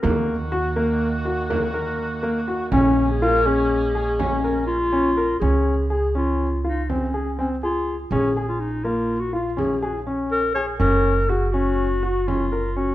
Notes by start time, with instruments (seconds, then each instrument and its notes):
0.02 upright bass D#2, woodwind section D#3 A#3 F#4, grand piano A#3, frame drum
0.52 grand piano F#4
0.76 grand piano A#3
1.25 grand piano F#4
1.50 grand piano A#3, frame drum
1.74 grand piano A#4
1.99 frame drum
2.23 grand piano A#3
2.48 grand piano F#4
2.71 upright bass A#1, woodwind section G#3 A#3 C#4, clarinet C#4, grand piano C#4, frame drum
3.10 clarinet G#4
3.21 grand piano F4, clarinet A#4, frame drum
3.46 grand piano C#4, clarinet G#4
3.70 frame drum
3.95 grand piano G#4
4.19 grand piano C#4, clarinet C#4, frame drum
4.44 grand piano A#4, frame drum
4.67 clarinet F4
4.92 grand piano C#4
5.17 grand piano A#4
5.40 upright bass C#2, grand piano C#4, clarinet G#4, frame drum
5.90 grand piano G#4, clarinet G#4
6.15 grand piano C#4, clarinet F4
6.64 clarinet D#4, grand piano F4
6.89 grand piano C4, clarinet C#4, frame drum
7.14 grand piano G#4
7.39 grand piano C4, clarinet C#4
7.63 clarinet F4, grand piano G#4
7.87 frame drum
8.11 upright bass A#1, grand piano C#4, clarinet G#4, frame drum
8.37 grand piano G#4
8.49 clarinet F4
8.60 clarinet D#4
8.84 grand piano A#3, clarinet F4
9.20 clarinet F#4
9.33 grand piano F4, clarinet F4
9.57 grand piano C#4, clarinet G#4, frame drum
9.82 grand piano G#4
10.07 grand piano C#4
10.32 clarinet A#4
10.54 grand piano G#4, clarinet C#5, frame drum
10.79 upright bass F#1, grand piano C#4, clarinet A#4, frame drum
11.29 grand piano F#4, clarinet G#4
11.52 grand piano C#4, clarinet F#4
12.03 grand piano F#4
12.28 grand piano C#4, clarinet F4, frame drum
12.52 grand piano A#4
12.77 grand piano C#4, clarinet F#4